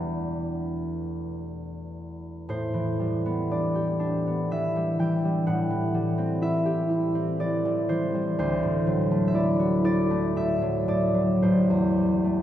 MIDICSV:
0, 0, Header, 1, 2, 480
1, 0, Start_track
1, 0, Tempo, 1071429
1, 1115, Tempo, 1001669
1, 1116, Time_signature, 3, 2, 24, 8
1, 2075, Tempo, 967742
1, 4475, Tempo, 1006711
1, 4955, Tempo, 1083032
1, 5879, End_track
2, 0, Start_track
2, 0, Title_t, "Harp"
2, 0, Program_c, 0, 46
2, 0, Note_on_c, 0, 40, 56
2, 0, Note_on_c, 0, 57, 39
2, 0, Note_on_c, 0, 59, 39
2, 0, Note_on_c, 0, 62, 40
2, 0, Note_on_c, 0, 71, 57
2, 0, Note_on_c, 0, 74, 76
2, 0, Note_on_c, 0, 76, 69
2, 496, Note_off_c, 0, 76, 0
2, 931, Note_off_c, 0, 74, 0
2, 1114, Note_on_c, 0, 45, 51
2, 1118, Note_on_c, 0, 72, 58
2, 1120, Note_off_c, 0, 40, 0
2, 1234, Note_on_c, 0, 52, 40
2, 1358, Note_on_c, 0, 55, 38
2, 1408, Note_off_c, 0, 57, 0
2, 1414, Note_off_c, 0, 59, 0
2, 1419, Note_off_c, 0, 62, 0
2, 1430, Note_off_c, 0, 71, 0
2, 1483, Note_on_c, 0, 59, 46
2, 1605, Note_on_c, 0, 62, 38
2, 1606, Note_on_c, 0, 74, 56
2, 1720, Note_on_c, 0, 67, 44
2, 1831, Note_off_c, 0, 62, 0
2, 1837, Note_on_c, 0, 62, 43
2, 1963, Note_off_c, 0, 59, 0
2, 1969, Note_on_c, 0, 59, 38
2, 2079, Note_off_c, 0, 52, 0
2, 2084, Note_on_c, 0, 52, 39
2, 2087, Note_on_c, 0, 76, 72
2, 2204, Note_off_c, 0, 55, 0
2, 2210, Note_on_c, 0, 55, 43
2, 2316, Note_off_c, 0, 52, 0
2, 2322, Note_on_c, 0, 52, 42
2, 2325, Note_on_c, 0, 79, 62
2, 2443, Note_off_c, 0, 55, 0
2, 2449, Note_on_c, 0, 55, 37
2, 2554, Note_off_c, 0, 45, 0
2, 2558, Note_on_c, 0, 78, 66
2, 2560, Note_on_c, 0, 45, 52
2, 2571, Note_off_c, 0, 62, 0
2, 2575, Note_off_c, 0, 52, 0
2, 2575, Note_off_c, 0, 74, 0
2, 2676, Note_on_c, 0, 52, 41
2, 2789, Note_off_c, 0, 55, 0
2, 2795, Note_on_c, 0, 55, 40
2, 2912, Note_on_c, 0, 60, 46
2, 3019, Note_off_c, 0, 72, 0
2, 3026, Note_off_c, 0, 76, 0
2, 3030, Note_on_c, 0, 64, 44
2, 3033, Note_on_c, 0, 76, 70
2, 3141, Note_off_c, 0, 67, 0
2, 3147, Note_on_c, 0, 67, 45
2, 3262, Note_off_c, 0, 64, 0
2, 3268, Note_on_c, 0, 64, 46
2, 3370, Note_off_c, 0, 78, 0
2, 3386, Note_off_c, 0, 60, 0
2, 3392, Note_on_c, 0, 60, 44
2, 3511, Note_off_c, 0, 52, 0
2, 3515, Note_on_c, 0, 52, 42
2, 3517, Note_on_c, 0, 74, 68
2, 3637, Note_off_c, 0, 55, 0
2, 3643, Note_on_c, 0, 55, 49
2, 3758, Note_off_c, 0, 52, 0
2, 3761, Note_on_c, 0, 72, 72
2, 3764, Note_on_c, 0, 52, 45
2, 3880, Note_off_c, 0, 55, 0
2, 3886, Note_on_c, 0, 55, 45
2, 3899, Note_off_c, 0, 59, 0
2, 3932, Note_off_c, 0, 74, 0
2, 4003, Note_off_c, 0, 72, 0
2, 4007, Note_on_c, 0, 38, 60
2, 4009, Note_on_c, 0, 72, 73
2, 4024, Note_off_c, 0, 52, 0
2, 4024, Note_off_c, 0, 67, 0
2, 4025, Note_off_c, 0, 55, 0
2, 4026, Note_off_c, 0, 45, 0
2, 4027, Note_off_c, 0, 79, 0
2, 4128, Note_on_c, 0, 45, 47
2, 4246, Note_on_c, 0, 54, 47
2, 4367, Note_on_c, 0, 57, 54
2, 4442, Note_off_c, 0, 76, 0
2, 4448, Note_on_c, 0, 76, 58
2, 4475, Note_off_c, 0, 64, 0
2, 4479, Note_on_c, 0, 64, 46
2, 4481, Note_on_c, 0, 74, 66
2, 4503, Note_off_c, 0, 76, 0
2, 4599, Note_on_c, 0, 66, 49
2, 4714, Note_off_c, 0, 64, 0
2, 4716, Note_off_c, 0, 74, 0
2, 4719, Note_on_c, 0, 64, 53
2, 4721, Note_on_c, 0, 74, 80
2, 4838, Note_off_c, 0, 57, 0
2, 4844, Note_on_c, 0, 57, 48
2, 4962, Note_off_c, 0, 45, 0
2, 4966, Note_on_c, 0, 45, 51
2, 4969, Note_on_c, 0, 76, 75
2, 5075, Note_off_c, 0, 54, 0
2, 5080, Note_on_c, 0, 54, 50
2, 5190, Note_off_c, 0, 45, 0
2, 5190, Note_off_c, 0, 74, 0
2, 5195, Note_on_c, 0, 45, 44
2, 5196, Note_on_c, 0, 74, 71
2, 5269, Note_off_c, 0, 60, 0
2, 5306, Note_off_c, 0, 54, 0
2, 5312, Note_on_c, 0, 54, 42
2, 5431, Note_off_c, 0, 72, 0
2, 5436, Note_on_c, 0, 72, 54
2, 5440, Note_on_c, 0, 33, 58
2, 5453, Note_off_c, 0, 38, 0
2, 5453, Note_off_c, 0, 54, 0
2, 5454, Note_off_c, 0, 74, 0
2, 5455, Note_off_c, 0, 45, 0
2, 5455, Note_off_c, 0, 66, 0
2, 5559, Note_on_c, 0, 40, 42
2, 5682, Note_on_c, 0, 55, 41
2, 5794, Note_off_c, 0, 57, 0
2, 5800, Note_on_c, 0, 57, 47
2, 5879, Note_off_c, 0, 33, 0
2, 5879, Note_off_c, 0, 40, 0
2, 5879, Note_off_c, 0, 55, 0
2, 5879, Note_off_c, 0, 57, 0
2, 5879, Note_off_c, 0, 64, 0
2, 5879, Note_off_c, 0, 72, 0
2, 5879, Note_off_c, 0, 76, 0
2, 5879, End_track
0, 0, End_of_file